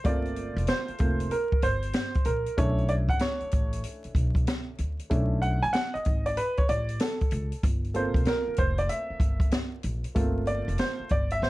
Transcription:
0.04 0.53 G1 medium
0.04 0.96 A3 medium
0.04 0.96 A#3 medium
0.04 0.96 C4 medium
0.04 0.96 F4 medium
0.04 0.71 D5 medium
0.04 kick loud
0.04 closed hi-hat medium
0.25 closed hi-hat soft
0.36 closed hi-hat medium
0.56 0.67 E1 medium
0.56 closed hi-hat medium
0.67 1.34 C5 medium
0.67 snare loud
0.67 closed hi-hat medium
0.88 muted upright bass stroke soft
0.88 closed hi-hat soft
0.98 1.29 F1 medium
0.98 1.28 A3 soft
0.98 1.28 A#3 soft
0.98 1.29 C4 soft
0.98 1.29 F4 soft
0.98 kick medium
0.98 closed hi-hat medium
1.20 closed hi-hat medium
1.31 1.64 A#4 medium
1.31 closed hi-hat medium
1.52 muted upright bass stroke soft
1.52 kick medium
1.62 1.92 G1 loud
1.62 2.28 C5 medium
1.62 closed hi-hat medium
1.82 closed hi-hat soft
1.93 snare loud
1.93 closed hi-hat loud
2.14 kick medium
2.14 closed hi-hat soft
2.25 2.45 A#1 medium
2.25 2.59 A#4 medium
2.25 closed hi-hat medium
2.46 closed hi-hat medium
2.57 3.06 B1 loud
2.57 5.06 A3 medium
2.57 5.07 C#4 soft
2.57 5.07 D4 medium
2.57 5.07 E4 medium
2.57 2.91 C#5 medium
2.57 kick loud
2.57 closed hi-hat loud
2.78 closed hi-hat soft
2.88 2.94 D5 medium
2.88 closed hi-hat medium
3.09 3.19 G#1 medium
3.09 3.21 F#5 loud
3.09 kick medium
3.09 closed hi-hat soft
3.19 3.80 C#5 medium
3.19 snare loud
3.19 closed hi-hat medium
3.40 muted upright bass stroke soft
3.40 closed hi-hat soft
3.51 3.82 A1 medium
3.51 kick loud
3.51 closed hi-hat medium
3.73 closed hi-hat medium
3.84 closed hi-hat medium
4.04 muted upright bass stroke soft
4.04 closed hi-hat soft
4.15 4.44 B1 medium
4.15 kick loud
4.15 closed hi-hat medium
4.35 kick medium
4.35 closed hi-hat soft
4.47 snare loud
4.47 closed hi-hat loud
4.78 4.98 D2 medium
4.78 closed hi-hat medium
4.99 closed hi-hat medium
5.10 5.59 B1 loud
5.10 5.56 A3 medium
5.10 5.56 C#4 medium
5.10 5.56 D4 medium
5.10 5.56 E4 medium
5.10 kick loud
5.10 closed hi-hat loud
5.42 5.61 F#5 medium
5.42 closed hi-hat medium
5.63 5.73 F#1 medium
5.63 5.74 G#5 loud
5.63 closed hi-hat soft
5.73 5.95 F#5 loud
5.73 snare loud
5.73 closed hi-hat loud
5.94 6.27 D#5 medium
5.94 muted upright bass stroke soft
5.94 closed hi-hat soft
6.05 6.35 G#1 medium
6.05 kick medium
6.05 closed hi-hat medium
6.26 6.37 D5 medium
6.26 closed hi-hat medium
6.37 6.58 B4 medium
6.37 closed hi-hat medium
6.57 6.68 C#5 medium
6.57 muted upright bass stroke soft
6.57 kick medium
6.57 closed hi-hat soft
6.69 6.98 A1 medium
6.69 6.98 D5 medium
6.69 closed hi-hat medium
6.89 closed hi-hat medium
7.00 7.60 A4 medium
7.00 snare loud
7.00 closed hi-hat loud
7.21 kick medium
7.21 closed hi-hat soft
7.31 7.51 C#2 medium
7.31 closed hi-hat medium
7.52 closed hi-hat soft
7.63 8.11 G1 loud
7.63 kick loud
7.63 closed hi-hat loud
7.84 closed hi-hat soft
7.94 10.14 A#3 medium
7.94 10.14 C4 medium
7.94 10.15 F4 medium
7.94 10.43 A4 medium
7.94 8.28 C5 medium
7.94 closed hi-hat medium
8.14 8.25 E1 medium
8.14 kick medium
8.14 closed hi-hat medium
8.25 8.59 A#4 medium
8.25 snare loud
8.25 closed hi-hat medium
8.47 muted upright bass stroke soft
8.56 8.87 F1 loud
8.56 8.77 C5 medium
8.56 kick medium
8.56 closed hi-hat medium
8.78 8.90 D5 medium
8.78 closed hi-hat medium
8.89 9.49 E5 medium
8.89 closed hi-hat medium
9.10 muted upright bass stroke soft
9.20 9.49 G1 medium
9.20 kick loud
9.20 closed hi-hat medium
9.40 kick loud
9.40 closed hi-hat medium
9.51 snare loud
9.51 closed hi-hat loud
9.83 10.03 A#1 medium
9.83 closed hi-hat medium
10.04 closed hi-hat medium
10.15 10.64 G1 loud
10.15 11.06 A3 medium
10.15 11.06 A#3 medium
10.15 11.07 C4 soft
10.15 11.07 F4 medium
10.15 kick loud
10.15 closed hi-hat loud
10.46 10.77 D5 medium
10.46 closed hi-hat medium
10.68 10.78 F1 medium
10.68 closed hi-hat medium
10.78 11.09 C5 medium
10.78 snare loud
10.78 closed hi-hat medium
11.00 muted upright bass stroke soft
11.09 11.40 G1 loud
11.09 11.30 D5 medium
11.09 kick medium
11.09 closed hi-hat medium
11.30 11.42 E5 medium
11.30 closed hi-hat medium
11.42 11.50 A1 medium
11.42 11.50 C5 medium
11.42 snare medium

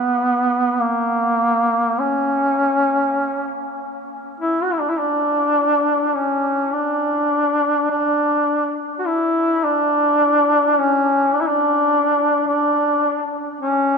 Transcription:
0.00 0.83 B3 medium
0.81 2.02 A#3 medium
2.00 3.81 C#4 medium
4.40 4.64 E4 medium
4.63 4.74 F#4 medium
4.73 4.82 E4 medium
4.80 4.91 D4 medium
4.89 4.92 E4 medium
4.89 5.00 E4 soft
4.98 6.17 D4 medium
6.16 6.75 C#4 medium
6.74 7.90 D4 medium
7.90 8.76 D4 medium
9.00 9.08 F#4 medium
9.07 9.66 E4 medium
9.64 10.80 D4 medium
10.79 11.35 C#4 medium
11.34 11.43 D4 medium
11.41 11.50 E4 medium
11.49 12.47 D4 medium
12.48 13.30 D4 medium
13.61 13.98 C#4 medium

